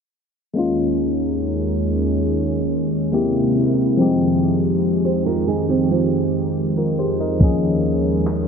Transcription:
0.54 3.10 D#2 medium
0.54 3.10 D#3 medium
0.54 3.07 G#3 medium
0.54 3.94 G#3 medium
0.54 3.08 A#3 medium
0.54 3.10 C#4 medium
0.54 3.09 C#4 medium
0.54 3.09 D#4 medium
0.59 3.10 F4 medium
3.12 3.97 C3 medium
3.12 3.98 G#3 medium
3.12 3.97 A#3 medium
3.12 3.98 A#3 medium
3.12 3.98 C4 medium
3.12 3.97 E4 medium
3.12 3.99 E4 medium
3.12 3.99 G4 medium
3.97 7.37 F2 medium
3.97 8.48 D#3 medium
3.97 7.36 F3 medium
3.97 4.04 G3 medium
3.97 7.37 G#3 medium
3.97 7.37 C4 medium
3.97 7.38 D#4 medium
3.97 7.37 G4 medium
4.02 7.40 G#3 medium
4.02 6.53 G4 medium
5.05 5.26 G4 medium
5.05 5.25 C5 medium
5.26 5.47 F4 medium
5.26 5.47 A#4 medium
5.48 5.68 D#4 medium
5.48 5.68 G#4 medium
5.69 5.90 C4 medium
5.69 5.90 G4 medium
5.91 7.16 C4 medium
5.91 7.15 F4 medium
6.77 6.98 F4 medium
6.77 6.97 A#4 medium
6.99 7.19 G4 medium
6.99 7.19 C5 medium
7.20 7.61 A#4 medium
7.20 7.61 D#5 medium
7.39 8.48 D#2 medium
7.39 8.48 F3 medium
7.39 8.48 G#3 medium
7.39 8.48 A#3 medium
7.39 8.48 C#4 medium
7.39 8.48 D#4 medium
7.39 kick loud
7.44 8.48 G#4 medium
8.27 clap loud

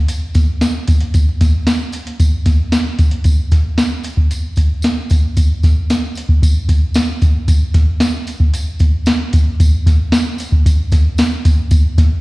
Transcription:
0.08 closed hi-hat medium
0.08 tambourine medium
0.34 kick medium
0.34 snare soft
0.34 closed hi-hat medium
0.34 tambourine medium
0.61 snare loud
0.61 closed hi-hat medium
0.61 tambourine medium
0.88 kick medium
0.88 closed hi-hat medium
0.88 tambourine medium
1.01 closed hi-hat soft
1.14 kick loud
1.14 closed hi-hat medium
1.14 tambourine medium
1.41 kick medium
1.41 snare soft
1.41 closed hi-hat medium
1.41 tambourine medium
1.67 snare loud
1.67 closed hi-hat medium
1.67 tambourine medium
1.92 closed hi-hat medium
1.92 tambourine medium
2.07 closed hi-hat medium
2.20 kick medium
2.20 closed hi-hat medium
2.20 tambourine medium
2.46 kick medium
2.46 snare soft
2.46 closed hi-hat medium
2.46 tambourine soft
2.72 snare loud
2.72 closed hi-hat medium
2.72 tambourine loud
2.99 kick medium
2.99 closed hi-hat medium
2.99 tambourine medium
3.11 closed hi-hat medium
3.24 kick loud
3.24 closed hi-hat medium
3.24 tambourine medium
3.51 kick medium
3.51 snare soft
3.51 closed hi-hat medium
3.51 tambourine soft
3.78 snare loud
3.78 closed hi-hat medium
3.78 tambourine medium
4.03 closed hi-hat medium
4.03 tambourine medium
4.17 kick medium
4.31 closed hi-hat medium
4.31 tambourine medium
4.56 kick medium
4.56 closed hi-hat medium
4.56 tambourine soft
4.82 snare loud
4.82 closed hi-hat medium
4.82 tambourine loud
5.10 kick medium
5.10 closed hi-hat medium
5.10 tambourine medium
5.37 kick loud
5.37 closed hi-hat medium
5.37 tambourine medium
5.63 kick medium
5.63 snare soft
5.63 closed hi-hat medium
5.63 tambourine soft
5.90 snare loud
5.90 closed hi-hat medium
5.90 tambourine loud
6.15 closed hi-hat medium
6.15 tambourine medium
6.29 kick medium
6.42 kick medium
6.42 closed hi-hat medium
6.42 tambourine medium
6.69 kick medium
6.69 closed hi-hat medium
6.69 tambourine soft
6.94 snare loud
6.94 closed hi-hat medium
6.94 tambourine medium
7.21 kick medium
7.21 closed hi-hat medium
7.21 tambourine medium
7.48 kick loud
7.48 closed hi-hat medium
7.48 tambourine medium
7.74 kick medium
7.74 snare soft
7.74 closed hi-hat medium
7.74 tambourine soft
8.00 snare loud
8.00 closed hi-hat medium
8.00 tambourine medium
8.27 closed hi-hat medium
8.27 tambourine medium
8.40 kick medium
8.54 closed hi-hat medium
8.54 tambourine medium
8.79 kick medium
8.79 closed hi-hat medium
8.79 tambourine soft
9.06 snare loud
9.06 closed hi-hat medium
9.06 tambourine loud
9.33 kick medium
9.33 closed hi-hat medium
9.33 tambourine medium
9.60 kick loud
9.60 closed hi-hat medium
9.60 tambourine medium
9.86 kick medium
9.86 snare soft
9.86 closed hi-hat medium
9.86 tambourine soft
10.12 snare loud
10.12 closed hi-hat medium
10.12 tambourine loud
10.38 closed hi-hat medium
10.38 tambourine medium
10.52 kick medium
10.66 kick medium
10.66 closed hi-hat medium
10.66 tambourine medium
10.92 kick medium
10.92 snare soft
10.92 closed hi-hat medium
10.92 tambourine soft
11.18 snare loud
11.18 closed hi-hat medium
11.18 tambourine medium
11.45 kick medium
11.45 closed hi-hat medium
11.45 tambourine medium
11.71 kick loud
11.71 closed hi-hat medium
11.71 tambourine medium
11.98 kick medium
11.98 snare soft
11.98 closed hi-hat medium
11.98 tambourine medium

